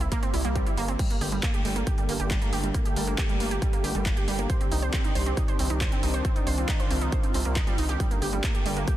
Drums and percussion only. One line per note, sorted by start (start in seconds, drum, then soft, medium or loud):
0.01 closed hi-hat medium
0.12 kick loud
0.12 closed hi-hat medium
0.23 closed hi-hat medium
0.34 open hi-hat loud
0.45 closed hi-hat medium
0.56 kick loud
0.56 closed hi-hat medium
0.67 closed hi-hat medium
0.77 open hi-hat medium
0.88 closed hi-hat medium
0.99 kick loud
0.99 closed hi-hat medium
0.99 crash medium
1.10 closed hi-hat medium
1.21 open hi-hat loud
1.32 closed hi-hat medium
1.43 kick loud
1.43 clap loud
1.43 closed hi-hat loud
1.54 closed hi-hat medium
1.65 open hi-hat medium
1.76 closed hi-hat soft
1.87 kick loud
1.87 closed hi-hat medium
1.98 closed hi-hat medium
2.09 open hi-hat loud
2.20 closed hi-hat medium
2.31 kick loud
2.31 clap loud
2.31 closed hi-hat medium
2.42 closed hi-hat medium
2.53 open hi-hat loud
2.64 closed hi-hat medium
2.74 kick loud
2.74 closed hi-hat medium
2.85 closed hi-hat medium
2.96 open hi-hat loud
3.07 closed hi-hat soft
3.18 kick loud
3.18 clap loud
3.18 closed hi-hat medium
3.29 closed hi-hat medium
3.40 open hi-hat medium
3.51 closed hi-hat medium
3.62 kick loud
3.62 closed hi-hat medium
3.73 closed hi-hat medium
3.84 open hi-hat loud
3.95 closed hi-hat medium
4.06 kick loud
4.06 clap loud
4.06 closed hi-hat medium
4.17 closed hi-hat medium
4.28 open hi-hat medium
4.39 closed hi-hat medium
4.50 kick loud
4.50 closed hi-hat medium
4.61 closed hi-hat medium
4.72 open hi-hat loud
4.83 closed hi-hat soft
4.93 kick loud
4.93 clap loud
4.93 closed hi-hat medium
5.04 closed hi-hat soft
5.15 open hi-hat loud
5.26 closed hi-hat soft
5.37 kick loud
5.37 closed hi-hat medium
5.48 closed hi-hat medium
5.59 open hi-hat loud
5.70 closed hi-hat soft
5.81 kick loud
5.81 clap loud
5.81 closed hi-hat medium
5.92 closed hi-hat soft
6.03 open hi-hat loud
6.14 closed hi-hat medium
6.25 kick loud
6.25 closed hi-hat medium
6.36 closed hi-hat medium
6.47 open hi-hat loud
6.58 closed hi-hat soft
6.69 kick loud
6.69 clap loud
6.69 closed hi-hat medium
6.80 closed hi-hat soft
6.91 open hi-hat medium
7.01 closed hi-hat soft
7.12 kick loud
7.12 closed hi-hat medium
7.23 closed hi-hat medium
7.34 open hi-hat loud
7.45 closed hi-hat soft
7.56 kick loud
7.56 clap loud
7.56 closed hi-hat medium
7.67 closed hi-hat soft
7.78 open hi-hat loud
7.89 closed hi-hat medium
8.00 kick loud
8.00 closed hi-hat medium
8.11 closed hi-hat medium
8.22 open hi-hat loud
8.33 closed hi-hat soft
8.44 kick loud
8.44 clap loud
8.44 closed hi-hat medium
8.55 closed hi-hat soft
8.66 open hi-hat medium
8.77 closed hi-hat soft
8.88 kick loud
8.88 closed hi-hat medium